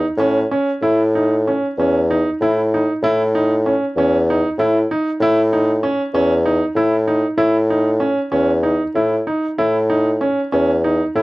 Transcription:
0.17 0.46 A2 medium
0.17 0.37 C#4 medium
0.51 0.69 C#4 medium
0.82 1.56 A2 medium
0.82 1.00 E4 medium
1.15 1.33 D#4 medium
1.47 1.65 C#4 medium
1.78 2.27 E2 medium
1.78 1.97 C#4 medium
2.11 2.28 D#4 medium
2.41 2.89 A2 medium
2.41 2.59 E4 medium
2.74 2.91 D#4 medium
3.03 3.75 A2 medium
3.03 3.21 E4 medium
3.35 3.52 D#4 medium
3.66 3.83 C#4 medium
3.96 4.45 E2 medium
3.96 4.15 C#4 medium
4.30 4.47 D#4 medium
4.58 4.86 A2 medium
4.58 4.77 E4 medium
4.91 5.08 D#4 medium
5.20 5.93 A2 medium
5.20 5.39 E4 medium
5.53 5.70 D#4 medium
5.83 6.01 C#4 medium
6.14 6.62 E2 medium
6.14 6.32 C#4 medium
6.46 6.63 D#4 medium
6.75 7.24 A2 medium
6.75 6.94 E4 medium
7.08 7.25 D#4 medium
7.38 8.11 A2 medium
7.38 7.55 E4 medium
7.70 7.88 D#4 medium
8.00 8.18 C#4 medium
8.32 8.81 E2 medium
8.32 8.49 C#4 medium
8.63 8.81 D#4 medium
8.95 9.23 A2 medium
8.95 9.13 E4 medium
9.27 9.45 D#4 medium
9.58 10.32 A2 medium
9.58 9.76 E4 medium
9.90 10.07 D#4 medium
10.21 10.39 C#4 medium
10.52 11.02 E2 medium
10.52 10.70 C#4 medium
10.84 11.02 D#4 medium
11.15 11.22 A2 medium
11.15 11.22 E4 medium

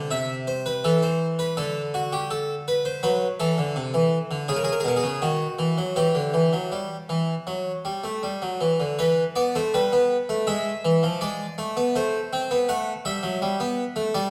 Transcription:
0.00 0.10 D3 medium
0.11 0.82 C3 medium
0.11 0.34 E5 medium
0.47 0.65 C5 medium
0.66 0.84 B4 medium
0.84 1.55 E3 medium
0.84 1.02 A4 medium
1.03 1.25 C5 medium
1.39 1.57 B4 medium
1.57 3.00 D3 medium
1.57 1.80 A4 medium
1.94 2.12 F#4 medium
2.13 2.30 G4 medium
2.31 2.53 A4 medium
2.68 2.85 B4 medium
2.85 3.03 C5 medium
3.03 3.26 F#3 medium
3.03 3.26 B4 medium
3.40 3.58 E3 medium
3.40 4.45 A4 medium
3.58 3.76 D3 medium
3.76 3.94 C3 medium
3.94 4.17 E3 medium
4.31 4.48 D3 medium
4.49 4.71 C#3 medium
4.49 4.57 G#4 medium
4.56 4.64 A#4 medium
4.64 4.72 G#4 medium
4.72 4.80 A#4 medium
4.80 4.88 G#4 medium
4.85 5.03 B2 medium
4.85 4.96 A#4 medium
4.96 5.22 G#4 medium
5.03 5.21 C#3 medium
5.22 5.45 D#3 medium
5.22 5.94 F#4 medium
5.59 5.77 E3 medium
5.78 5.96 F#3 medium
5.96 6.15 E3 medium
5.96 8.57 G4 medium
6.15 6.33 D3 medium
6.34 6.52 E3 medium
6.53 6.71 F#3 medium
6.72 6.95 G3 medium
7.09 7.33 E3 medium
7.47 7.71 F#3 medium
7.85 8.04 G3 medium
8.04 8.22 A3 soft
8.23 8.41 G3 medium
8.42 8.60 F#3 medium
8.61 8.79 E3 medium
8.80 8.98 D3 soft
8.99 9.22 E3 medium
8.99 9.22 B4 medium
9.36 9.54 B3 medium
9.36 9.54 D5 medium
9.55 9.73 A3 medium
9.55 9.74 C5 medium
9.74 9.92 G3 medium
9.74 10.46 B4 medium
9.93 10.15 B3 medium
10.29 10.47 A3 medium
10.47 10.70 G#3 medium
10.47 11.19 E5 medium
10.85 11.03 E3 medium
11.03 11.21 F3 medium
11.21 11.44 G#3 medium
11.21 11.93 D5 medium
11.58 11.76 A3 medium
11.77 11.95 B3 medium
11.96 12.18 A3 medium
11.96 12.67 C5 medium
12.33 12.50 C4 medium
12.51 12.68 B3 medium
12.69 12.91 A3 medium
12.69 12.91 F#5 medium
13.05 13.23 G3 medium
13.05 14.11 E5 medium
13.23 13.41 F#3 medium
13.42 13.59 G3 medium
13.60 13.82 B3 medium
13.96 14.14 A3 medium
14.14 14.30 G3 medium
14.14 14.30 D5 medium

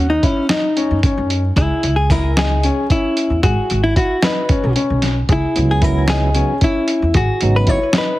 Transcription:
0.00 0.18 D#2 medium
0.10 0.24 D#4 medium
0.23 0.49 C#4 medium
0.23 0.42 E4 medium
0.23 kick medium
0.23 closed hi-hat medium
0.49 0.99 D#4 medium
0.49 0.69 D#4 medium
0.49 snare medium
0.49 closed hi-hat medium
0.77 0.96 C#4 medium
0.77 closed hi-hat medium
0.91 1.01 F#2 medium
1.03 1.41 C#4 medium
1.03 kick medium
1.03 closed hi-hat medium
1.18 1.49 F#2 medium
1.30 closed hi-hat medium
1.56 1.67 C#2 medium
1.56 1.94 E4 medium
1.56 1.95 G#4 medium
1.56 kick medium
1.56 closed hi-hat medium
1.83 2.68 C#2 medium
1.83 closed hi-hat medium
1.96 2.11 G#4 medium
2.10 2.30 E4 medium
2.10 2.37 A#4 medium
2.10 kick medium
2.10 snare soft
2.10 closed hi-hat medium
2.37 2.56 D#4 medium
2.37 2.87 G#4 medium
2.37 snare loud
2.37 closed hi-hat medium
2.63 2.83 C#4 medium
2.63 closed hi-hat medium
2.90 3.28 C#4 medium
2.90 3.40 E4 medium
2.90 kick medium
2.90 closed hi-hat medium
3.17 closed hi-hat medium
3.30 3.40 E2 medium
3.43 3.54 G#1 medium
3.43 3.83 F#4 medium
3.43 3.81 G#4 medium
3.43 kick medium
3.43 closed hi-hat medium
3.70 3.91 G#1 medium
3.70 closed hi-hat soft
3.84 3.97 E4 medium
3.96 4.15 E4 medium
3.96 4.24 F#4 medium
3.96 kick medium
3.96 closed hi-hat medium
4.22 4.41 D#4 medium
4.22 4.73 B4 medium
4.22 snare loud
4.22 closed hi-hat medium
4.49 4.68 C#4 medium
4.49 kick medium
4.49 closed hi-hat medium
4.64 4.74 B1 medium
4.76 5.14 C#4 medium
4.76 closed hi-hat medium
4.90 5.21 B1 medium
5.02 snare soft
5.02 closed hi-hat medium
5.29 5.39 C#2 medium
5.29 5.72 E4 medium
5.29 5.67 G#4 medium
5.29 kick medium
5.29 closed hi-hat medium
5.55 6.41 C#2 medium
5.55 6.30 C#3 medium
5.55 6.30 F#3 medium
5.55 6.30 B3 medium
5.55 6.30 E4 medium
5.55 closed hi-hat soft
5.71 5.84 G#4 medium
5.82 6.01 E4 medium
5.82 6.09 A#4 medium
5.82 kick medium
5.82 closed hi-hat medium
6.08 6.28 D#4 medium
6.08 6.59 G#4 medium
6.08 snare loud
6.08 closed hi-hat medium
6.34 6.54 C#3 soft
6.34 6.54 F#3 soft
6.34 6.54 B3 medium
6.34 6.54 C#4 medium
6.34 6.54 D#4 medium
6.34 closed hi-hat medium
6.61 6.99 C#4 medium
6.61 7.16 E4 medium
6.61 kick medium
6.61 closed hi-hat medium
6.88 closed hi-hat medium
7.02 7.13 E2 medium
7.14 7.25 G#1 medium
7.14 7.57 F#4 medium
7.14 7.52 G#4 medium
7.14 kick medium
7.14 closed hi-hat medium
7.41 7.63 G#1 medium
7.41 7.79 C#3 medium
7.41 7.80 F#3 soft
7.41 7.80 B3 soft
7.41 7.80 D#4 medium
7.41 closed hi-hat medium
7.56 7.69 B4 medium
7.67 7.87 E4 medium
7.67 7.96 C#5 medium
7.67 kick medium
7.67 closed hi-hat medium
7.93 8.13 D#4 medium
7.93 snare medium
7.93 closed hi-hat medium
7.98 8.19 B4 medium

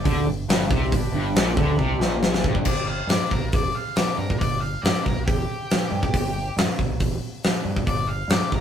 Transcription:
0.00 0.29 D4 medium
0.00 0.29 G4 medium
0.00 0.29 D5 medium
0.04 0.25 D2 medium
0.04 0.26 D3 medium
0.04 kick medium
0.04 open hi-hat medium
0.25 0.46 G1 medium
0.25 0.44 G2 medium
0.48 0.69 G1 loud
0.48 0.70 G2 loud
0.48 snare loud
0.48 open hi-hat medium
0.70 0.91 C2 loud
0.70 0.92 C3 loud
0.70 kick loud
0.92 1.11 G1 medium
0.92 1.10 G2 medium
0.92 1.26 D4 medium
0.92 1.26 G4 medium
0.92 1.26 B4 medium
0.92 kick medium
0.92 open hi-hat medium
1.12 1.33 G1 medium
1.12 1.35 G2 loud
1.35 1.55 A#1 loud
1.35 1.57 A#2 loud
1.35 2.03 D4 medium
1.35 2.03 G4 medium
1.35 2.03 B4 medium
1.35 snare loud
1.35 open hi-hat soft
1.57 1.77 D2 medium
1.57 1.78 D3 loud
1.57 kick loud
1.78 1.99 C2 medium
1.78 2.01 C3 medium
1.78 kick medium
2.00 2.41 A#1 medium
2.00 2.44 A#2 loud
2.00 snare medium
2.23 snare medium
2.34 snare medium
2.44 2.64 G1 medium
2.44 2.66 G2 loud
2.44 kick medium
2.55 kick medium
2.65 3.00 G1 medium
2.65 2.87 D5 medium
2.65 kick medium
2.65 crash loud
2.86 3.08 F5 medium
3.07 3.17 G2 medium
3.07 3.30 D5 medium
3.07 snare loud
3.07 open hi-hat medium
3.31 3.39 G1 medium
3.31 3.52 A#4 medium
3.31 kick medium
3.40 3.49 B1 medium
3.52 3.70 E1 medium
3.52 3.74 D5 medium
3.52 kick loud
3.52 open hi-hat soft
3.75 3.96 F5 medium
3.96 4.17 D5 medium
3.96 snare medium
3.96 open hi-hat medium
4.17 4.35 G2 medium
4.17 4.38 A#4 loud
4.30 kick medium
4.38 4.75 G1 medium
4.38 4.60 D5 medium
4.38 kick medium
4.38 open hi-hat medium
4.60 4.82 F5 medium
4.82 4.92 G2 medium
4.82 5.04 D5 medium
4.82 snare loud
4.82 open hi-hat medium
5.04 5.14 G1 medium
5.04 5.25 A#4 medium
5.04 kick medium
5.15 5.24 B1 medium
5.25 5.44 E1 medium
5.25 6.52 G4 medium
5.25 kick loud
5.25 open hi-hat soft
5.71 snare loud
5.71 open hi-hat medium
5.91 6.09 G2 medium
6.03 kick medium
6.13 6.48 G1 medium
6.13 kick loud
6.13 open hi-hat medium
6.57 6.65 G2 medium
6.57 snare loud
6.57 open hi-hat soft
6.79 6.87 G1 medium
6.79 kick medium
6.90 6.99 B1 medium
6.99 7.17 E1 medium
6.99 kick medium
6.99 open hi-hat medium
7.44 snare loud
7.44 open hi-hat soft
7.65 7.82 G2 medium
7.77 kick medium
7.87 8.22 G1 medium
7.87 8.08 D5 medium
7.87 kick medium
7.87 open hi-hat soft
8.07 8.29 F5 medium
8.28 8.38 G2 medium
8.28 8.52 D5 medium
8.28 snare loud
8.28 open hi-hat soft
8.52 8.61 G1 medium
8.52 8.61 A#4 medium
8.52 kick medium

